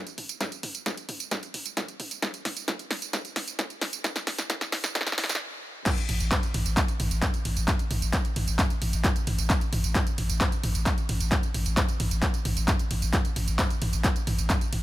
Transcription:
0.07 closed hi-hat, tambourine
0.18 mid tom, open hi-hat
0.29 closed hi-hat, tambourine
0.41 kick, snare, closed hi-hat, mid tom, tambourine
0.52 closed hi-hat, tambourine
0.63 mid tom, open hi-hat
0.75 closed hi-hat, tambourine
0.86 kick, snare, closed hi-hat, mid tom, tambourine
0.97 closed hi-hat, tambourine
1.09 mid tom, open hi-hat
1.20 closed hi-hat, tambourine
1.31 kick, snare, closed hi-hat, mid tom, tambourine
1.43 closed hi-hat, tambourine
1.54 mid tom, open hi-hat
1.66 closed hi-hat, tambourine
1.77 kick, snare, closed hi-hat, mid tom, tambourine
1.88 closed hi-hat, tambourine
2.00 mid tom, open hi-hat
2.11 closed hi-hat, tambourine
2.22 kick, snare, closed hi-hat, mid tom, tambourine
2.34 closed hi-hat, tambourine
2.45 snare, mid tom, open hi-hat
2.57 closed hi-hat, tambourine
2.68 kick, snare, closed hi-hat, mid tom, tambourine
2.79 closed hi-hat, tambourine
2.91 snare, mid tom, open hi-hat
3.02 closed hi-hat, tambourine
3.13 kick, snare, closed hi-hat, mid tom, tambourine
3.25 closed hi-hat, tambourine
3.36 snare, mid tom, open hi-hat
3.48 closed hi-hat, tambourine
3.59 kick, snare, closed hi-hat, mid tom, tambourine
3.70 closed hi-hat, tambourine
3.81 snare, mid tom, open hi-hat
3.93 closed hi-hat, tambourine
4.04 kick, snare, closed hi-hat, mid tom, tambourine
4.16 snare, closed hi-hat, tambourine
4.27 snare, mid tom, open hi-hat
4.38 snare, closed hi-hat, tambourine
4.50 kick, snare, closed hi-hat, mid tom, tambourine
4.61 snare, closed hi-hat, tambourine
4.72 snare, mid tom, open hi-hat
4.84 snare, closed hi-hat, tambourine
4.95 kick, snare, closed hi-hat, mid tom, tambourine
5.01 snare
5.07 snare, closed hi-hat, tambourine
5.12 snare
5.18 snare, mid tom, open hi-hat
5.24 snare
5.29 snare, closed hi-hat, tambourine
5.35 snare
5.86 kick, clap, closed hi-hat, mid tom, crash, tambourine
5.98 closed hi-hat, tambourine
6.09 A1, mid tom, open hi-hat, ride
6.20 A1, closed hi-hat, tambourine
6.32 kick, clap, closed hi-hat, mid tom, tambourine
6.43 closed hi-hat, tambourine
6.54 A1, mid tom, open hi-hat, ride
6.66 A1, closed hi-hat, tambourine
6.77 kick, clap, closed hi-hat, mid tom, tambourine
6.88 closed hi-hat, tambourine
7.00 A1, mid tom, open hi-hat, ride
7.11 A1, closed hi-hat, tambourine
7.22 kick, clap, closed hi-hat, mid tom, tambourine
7.34 closed hi-hat, tambourine
7.45 A1, mid tom, open hi-hat, ride
7.57 A1, closed hi-hat, tambourine
7.68 kick, clap, closed hi-hat, mid tom, tambourine
7.79 closed hi-hat, tambourine
7.91 A1, mid tom, open hi-hat, ride
8.02 A1, closed hi-hat, tambourine
8.13 kick, clap, closed hi-hat, mid tom, tambourine
8.25 closed hi-hat, tambourine
8.36 A1, mid tom, open hi-hat, ride
8.48 A1, closed hi-hat, tambourine
8.59 kick, clap, closed hi-hat, mid tom, tambourine
8.70 closed hi-hat, tambourine
8.82 A1, mid tom, open hi-hat, ride
8.93 A1, closed hi-hat, tambourine
9.04 kick, clap, closed hi-hat, mid tom, tambourine
9.16 closed hi-hat, tambourine
9.27 A1, mid tom, open hi-hat, ride
9.38 A1, closed hi-hat, tambourine
9.50 kick, clap, closed hi-hat, mid tom, tambourine
9.61 closed hi-hat, tambourine
9.73 A1, mid tom, open hi-hat, ride
9.84 A1, closed hi-hat, tambourine
9.95 kick, clap, closed hi-hat, mid tom, tambourine
10.07 closed hi-hat, tambourine
10.18 A1, mid tom, open hi-hat, ride
10.29 A1, closed hi-hat, tambourine
10.41 kick, clap, closed hi-hat, mid tom, tambourine
10.52 closed hi-hat, tambourine
10.63 A1, mid tom, open hi-hat, ride
10.75 A1, closed hi-hat, tambourine
10.86 kick, clap, closed hi-hat, mid tom, tambourine
10.98 closed hi-hat, tambourine
11.09 A1, mid tom, open hi-hat, ride
11.20 A1, closed hi-hat, tambourine
11.32 kick, clap, closed hi-hat, mid tom, tambourine
11.43 closed hi-hat, tambourine
11.54 A1, mid tom, open hi-hat, ride
11.66 A1, closed hi-hat, tambourine
11.77 kick, clap, closed hi-hat, mid tom, tambourine
11.89 closed hi-hat, tambourine
12.00 A1, mid tom, open hi-hat, ride
12.11 A1, closed hi-hat, tambourine
12.23 kick, clap, closed hi-hat, mid tom, tambourine
12.34 closed hi-hat, tambourine
12.45 A1, mid tom, open hi-hat, ride
12.57 A1, closed hi-hat, tambourine
12.68 kick, clap, closed hi-hat, mid tom, tambourine
12.79 closed hi-hat, tambourine
12.91 A1, mid tom, open hi-hat, ride
13.02 A1, closed hi-hat, tambourine
13.13 kick, clap, closed hi-hat, mid tom, tambourine
13.25 closed hi-hat, tambourine
13.36 A1, mid tom, open hi-hat, ride
13.48 A1, closed hi-hat, tambourine
13.59 kick, clap, closed hi-hat, mid tom, tambourine
13.70 closed hi-hat, tambourine
13.82 A1, mid tom, open hi-hat, ride
13.93 A1, closed hi-hat, tambourine
14.04 kick, clap, closed hi-hat, mid tom, tambourine
14.16 closed hi-hat, tambourine
14.27 A1, mid tom, open hi-hat, ride
14.38 A1, closed hi-hat, tambourine
14.50 kick, clap, closed hi-hat, mid tom, tambourine
14.61 closed hi-hat, tambourine
14.73 A1, mid tom, open hi-hat, ride

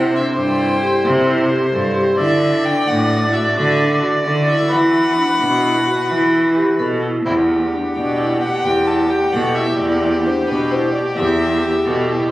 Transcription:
Already playing: C3 D3 C4 E4 C5 F#5
0.14 D4 E5
0.36 G2 D4 G5
0.59 E4
0.81 G4
1.04 C3 G4
1.27 E4
1.50 G4
1.72 G2 A4
1.95 G4
2.17 D3 E3 D4 E4 F#4 D5 E5
2.41 E4
2.63 D4 G5
2.87 A2 D4 F#5
3.09 E4
3.32 F#4 E5
3.55 D3 F#4 E5
3.78 D4
4.01 F#4
4.24 D3 A4 D5
4.47 E4 E5
4.70 E3 B3 E4 B4 F#5
4.94 E4
5.16 D4
5.39 B2 D4
5.63 E4
5.86 F#4
6.09 E3 F#4
6.32 E4
6.55 G4
6.79 B2 A4
7.02 E4
7.26 E2 D3 G3 A3 C4 E4 G4 F#5
7.49 E4
7.72 D4
7.95 B2 D4 D5
8.18 E4
8.41 G4 F#5
8.65 E2 G4 G5
8.87 E4 A5
9.10 G4 G5
9.32 B2 A4 F#5
9.55 E4 E5
9.78 E2 E4 D5
10.02 E4
10.25 D4 C5
10.47 B2 D4 B4
10.71 E4 C5
10.93 G4 D5
11.16 E2 G4 E5
11.39 E4
11.62 G4
11.85 B2 A4
12.08 E4

